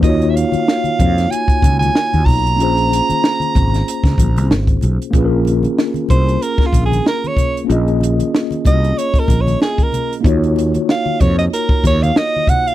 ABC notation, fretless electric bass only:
X:1
M:4/4
L:1/16
Q:"Swing 16ths" 1/4=94
K:Bbm
V:1 name="Fretless electric bass" clef=bass
E,,3 z3 F,,2 z2 D,,2 z E,, _C,,2 | B,,,3 z3 A,,,2 z D,, B,,, C,, A,,,2 _C,, z | B,,,4 z2 C,,2 z2 B,,,2 z4 | B,,,4 z2 C,,2 z2 B,,,2 z4 |
E,,4 z2 F,,2 z2 E,,2 z4 |]